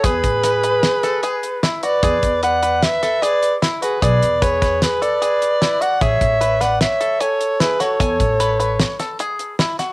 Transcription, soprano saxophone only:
\new Staff \with { instrumentName = "Soprano saxophone" } { \time 5/4 \key a \major \tempo 4 = 151 b'1 r8 d''8~ | d''4 fis''4 e''4 d''4 r8 b'8 | d''4 cis''4 b'8 d''2 fis''8 | e''4. fis''8 e''4 cis''4 b'8 cis''8~ |
cis''2~ cis''8 r2 r8 | }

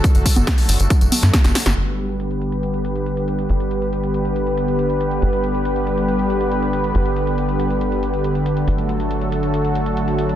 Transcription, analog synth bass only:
\new Staff \with { instrumentName = "Analog synth bass" } { \clef bass \time 4/4 \key g \major \tempo 4 = 139 r16 g,,16 r16 g,,16 r8 g,,16 g,,16 r16 g,,16 r16 g,16 r16 g,,16 r16 g,,16 | g,,1 | g,,1 | g,,1 |
g,,1 | g,,1 | }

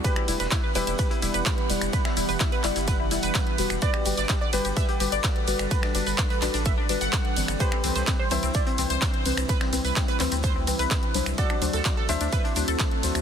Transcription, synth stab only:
\new Staff \with { instrumentName = "Synth stab" } { \time 4/4 \key e \minor \tempo 4 = 127 <g e' d''>8 <g e' d''>8 r8 <g e' d''>8 r8 <g e' d''>4 <g e' d''>8~ | <g e' d''>8 <g e' d''>8 r8 <g e' d''>8 r8 <g e' d''>4 <g fis' b'>8~ | <g fis' b'>8 <g fis' b'>8 r8 <g fis' b'>8 r8 <g fis' b'>4 <g fis' b'>8~ | <g fis' b'>8 <g fis' b'>8 r8 <g fis' b'>8 r8 <g fis' b'>8 r8 <e c' d''>8~ |
<e c' d''>8 <e c' b'>8 r8 <e c' b'>8 r8 <e c' b'>4 <e c' b'>8~ | <e c' b'>8 <e c' b'>8 r8 <e c' b'>8 r8 <e c' b'>4 <fis d' c''>8~ | <fis d' c''>8 <fis d' c''>8 r8 <fis d' c''>8 r8 <fis d' c''>4 <fis d' c''>8 | }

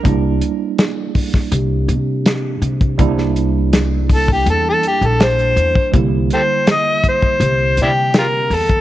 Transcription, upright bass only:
\new Staff \with { instrumentName = "Upright bass" } { \clef bass \time 4/4 \key c \mixolydian \tempo 4 = 82 c,8 r4. c,8 c4 c8 | c,2 e,8 r16 bes,,8. e,16 r16 | c,8 r4. c,8 c4 e,8 | }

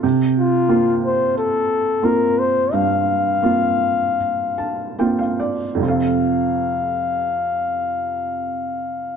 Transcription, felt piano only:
\new Staff \with { instrumentName = "Felt piano" } { \time 4/4 \key f \major \tempo 4 = 78 << { r1 | r2 r8 a''8 g''16 f''16 d''8 | r1 | } \\ { c4 <bes c' f'>4 r4 <bes c' f'>4 | g,4 <bes c' f'>4 r4 <bes c' f'>4 | <f, c f c' a' f''>1 | } >> }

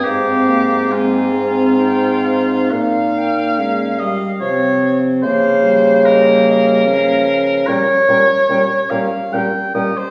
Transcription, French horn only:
\new Staff \with { instrumentName = "French horn" } { \clef bass \time 3/4 \key bes \dorian \tempo 4 = 72 c'8 bes8 aes8 c'8 c'4 | bes4 aes8 g8 f8 r8 | f8 g4. f4 | g8 g8 g8 g8 g8 g8 | }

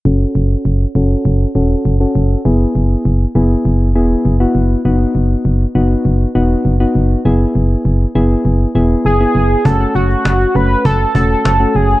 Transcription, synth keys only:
\new Staff \with { instrumentName = "Synth keys" } { \time 4/4 \key fis \dorian \tempo 4 = 100 <cis' fis' a'>4~ <cis' fis' a'>16 r16 <cis' fis' a'>4 <cis' fis' a'>8. <cis' fis' a'>8. | <b e' gis'>4~ <b e' gis'>16 r16 <b e' gis'>4 <b e' gis'>8. <b e' fis'>8. | <b dis' fis'>4~ <b dis' fis'>16 r16 <b dis' fis'>4 <b dis' fis'>8. <b dis' fis'>8. | <b e' gis'>4~ <b e' gis'>16 r16 <b e' gis'>4 <b e' gis'>8. <b e' gis'>8. |
<a cis' fis'>16 <a cis' fis'>4 r16 <a cis' fis'>4 <a cis' fis'>8. <a cis' fis'>8. | }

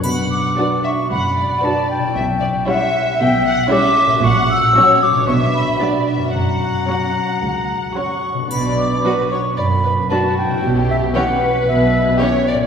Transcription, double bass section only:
\new Staff \with { instrumentName = "Double bass section" } { \clef bass \time 4/4 \key b \minor \tempo 4 = 114 b,,4 r4 fis,,4 r4 | b,,4 r4 b,,4 r4 | ais,,4 r4 b,,4 r4 | fis,,4 r4 cis,4 r4 |
b,,4 r4 fis,,4 r4 | b,,4 r4 b,,4 r4 | }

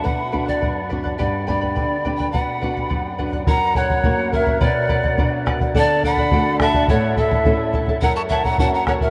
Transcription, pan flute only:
\new Staff \with { instrumentName = "Pan flute" } { \time 2/4 \key b \minor \tempo 4 = 106 fis''8. d''8. r8 | d''8 d''4~ d''16 g''16 | fis''4. r8 | fis''8 cis''4 ais'8 |
d''4. r8 | d''8 fis''4 e''8 | cis''8 a'4 r8 | fis''16 a''16 e''16 fis''16 fis''16 fis''16 cis''16 ais'16 | }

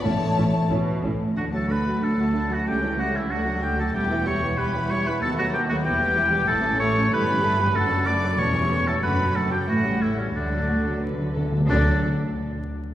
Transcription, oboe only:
\new Staff \with { instrumentName = "Oboe" } { \time 2/4 \key d \major \tempo 4 = 93 r2 | fis'16 a'16 b'8 a'8. fis'16 | g'8 fis'16 e'16 fis'8 g'16 a'16 | g'8 cis''8 b'8 cis''16 b'16 |
a'16 fis'16 g'16 fis'16 g'4 | a'8 cis''8 b'4 | a'8 d''8 cis''8. a'16 | b'8 a'16 g'16 fis'8 e'16 cis'16 |
d'4 r4 | d'8 r4. | }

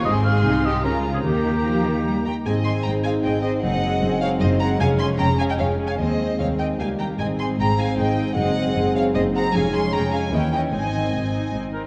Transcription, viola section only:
\new Staff \with { instrumentName = "Viola section" } { \time 3/4 \key aes \major \tempo 4 = 152 c'4 ees'4 f'4 | g'2~ g'8 r8 | <c' aes'>8 <c' aes'>8 <c' aes'>8 <c' aes'>8 <c' aes'>8 <c' aes'>8 | <c' aes'>8 <c' aes'>8 <c' aes'>8 <c' aes'>8 <c' aes'>8 <c' aes'>8 |
<des' aes'>8 <des' aes'>8 <des' aes'>8 <des' aes'>8 <des' aes'>8 <des' aes'>8 | <c' aes'>8 <c' aes'>8 <c' aes'>8 <c' aes'>8 <bes g'>8 <bes g'>8 | <c' aes'>8 <c' aes'>8 <c' aes'>8 <c' aes'>8 <c' aes'>8 <c' aes'>8 | <c' aes'>8 <c' aes'>8 <c' aes'>8 <c' aes'>8 <c' aes'>8 <c' aes'>8 |
<des' aes'>8 <des' aes'>8 <des' aes'>8 <des' aes'>8 <des' fes'>8 <des' fes'>8 | <c' ees'>8 <c' ees'>8 <c' ees'>8 <c' ees'>8 <c' ees'>8 <c' ees'>8 | }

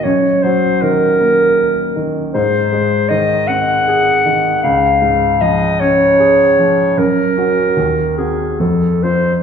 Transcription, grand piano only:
\new Staff \with { instrumentName = "Grand piano" } { \clef bass \time 3/4 \key des \major \tempo 4 = 78 ges,8 ges8 ees8 bes8 bes'8 ees8 | aes,8 aes8 ees8 c'8 aes'8 ees8 | des,8 aes,8 f8 des'8 aes'8 f8 | ges,8 <des' ges'>8 ees,8 <c' ges'>8 f,8 <c' f'>8 | }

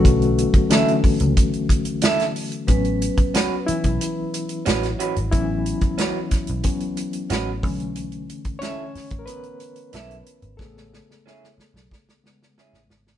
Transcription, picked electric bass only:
\new Staff \with { instrumentName = "Picked electric bass" } { \clef bass \time 4/4 \key a \major \tempo 4 = 91 b,,8. r4 cis,16 r2 | a,,8. r4 b,,16 r4 a,,8 r16 gis,,16 | a,,8. r4 b,,16 r4 a,,8 b,,8~ | b,,8. r4 a,,16 r4 b,,8 r16 gis,,16 |
a,,8. r4 b,,16 r4 r16 a,,16 gis,,8 | }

